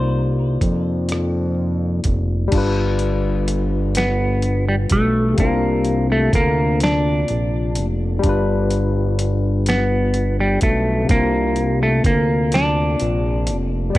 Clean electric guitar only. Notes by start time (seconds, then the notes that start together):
Already playing: C5
3.97 B3
4.69 G3
4.92 A3
5.40 A#3
6.12 A3
6.35 A#3
6.83 D4
9.69 B3
10.40 G3
10.63 A3
11.11 A#3
11.83 A3
12.06 A#3
12.54 D4